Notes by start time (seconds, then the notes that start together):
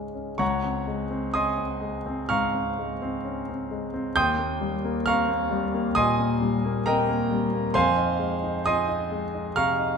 Already playing: G#2 G#3 C#4 D#4 F5 G#5 C#6 D#6
0.14 C#4
0.38 C#2 C#5 F#5 A#5 C#6
0.63 C4
0.87 G#3
1.10 C4
1.34 C#4 D#5 G#5 C6 D#6
1.58 C4
1.81 G#3
2.06 C4
2.29 G#2 F5 A#5 C#6 F6
2.54 C4
2.79 G#3
3.02 C4
3.25 C#4
3.49 C4
3.71 G#3
3.94 C4
4.16 D#2 G5 C6 D#6 G6
4.39 A#3
4.61 G3
4.84 A#3
5.06 C4 F5 A#5 C#6 F6
5.29 A#3
5.51 G3
5.74 A#3
5.95 A#2 D#5 G#5 C6 D#6
6.19 A#3
6.42 G3
6.65 A#3
6.86 C4 A#4 D#5 G5 A#5
7.08 A#3
7.31 G3
7.53 A#3
7.74 F2 C5 F5 G#5 C6
7.97 D#4
8.19 G#3
8.43 D#4
8.66 F4 D#5 G#5 C6 D#6
8.88 D#4
9.12 G#3
9.35 D#4
9.56 C3 F5 A#5 C#6 F6
9.79 D#4